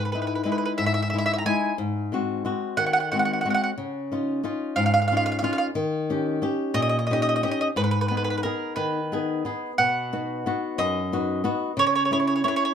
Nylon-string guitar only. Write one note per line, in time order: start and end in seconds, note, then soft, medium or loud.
0.00 0.44 G#2 medium
0.14 0.44 G#3 soft
0.14 0.45 D#4 soft
0.14 0.45 E4 soft
0.45 1.00 G#3 soft
0.45 1.00 D#4 soft
0.45 1.00 E4 soft
0.79 1.44 G#2 medium
1.13 1.44 G#3 soft
1.13 1.45 D#4 soft
1.13 1.45 E4 soft
1.45 1.72 G#3 soft
1.45 1.72 D#4 soft
1.45 1.72 E4 medium
1.78 2.44 G#2 medium
2.12 2.44 G#3 soft
2.12 2.43 C4 soft
2.12 2.44 F#4 soft
2.45 2.99 G#3 soft
2.45 2.99 C4 soft
2.45 3.00 F#4 medium
2.77 3.43 D#3 medium
3.12 3.44 G#3 soft
3.12 3.44 C4 soft
3.12 3.45 F#4 soft
3.45 3.71 G#3 soft
3.45 3.71 C4 soft
3.45 3.71 F#4 medium
3.78 4.43 C#3 medium
4.12 4.42 C#4 soft
4.12 4.43 D#4 soft
4.12 4.43 F4 soft
4.43 4.98 C#4 soft
4.43 4.98 D#4 soft
4.43 4.98 F4 soft
4.76 5.42 G#2 medium
5.12 5.41 C#4 soft
5.12 5.42 D#4 soft
5.12 5.43 F4 soft
5.43 5.69 C#4 soft
5.43 5.69 D#4 soft
5.43 5.70 F4 medium
5.75 6.41 D#3 medium
6.10 6.41 C#4 soft
6.10 6.41 D#4 soft
6.10 6.42 G4 soft
6.42 6.96 C#4 soft
6.42 6.97 D#4 soft
6.42 6.97 G4 medium
6.74 7.40 A#2 medium
7.10 7.42 C#4 soft
7.10 7.42 D#4 soft
7.10 7.43 G4 soft
7.43 7.69 C#4 soft
7.43 7.69 D#4 soft
7.43 7.70 G4 medium
7.76 8.42 G#2 medium
8.11 8.43 B3 soft
8.11 8.44 D#4 soft
8.11 8.44 G#4 soft
8.44 8.98 B3 soft
8.44 8.99 D#4 soft
8.44 8.99 G#4 soft
8.77 9.42 D#3 medium
9.12 9.44 B3 soft
9.12 9.45 D#4 soft
9.12 9.44 G#4 medium
9.45 9.71 B3 soft
9.45 9.71 D#4 soft
9.45 9.71 G#4 soft
9.79 10.44 B2 medium
10.13 10.45 B3 soft
10.13 10.45 D#4 soft
10.13 10.46 F#4 soft
10.46 11.00 B3 soft
10.46 11.00 D#4 soft
10.46 11.00 F#4 medium
10.78 11.44 F#2 medium
11.12 11.43 B3 soft
11.12 11.43 D#4 soft
11.12 11.43 F#4 soft
11.44 11.70 B3 medium
11.44 11.71 D#4 medium
11.44 11.71 F#4 medium
11.77 12.43 C#3 medium
12.11 12.43 C#4 soft
12.11 12.44 E4 soft
12.11 12.44 G#4 soft
12.44 12.74 C#4 soft
12.44 12.74 E4 soft
12.44 12.74 G#4 soft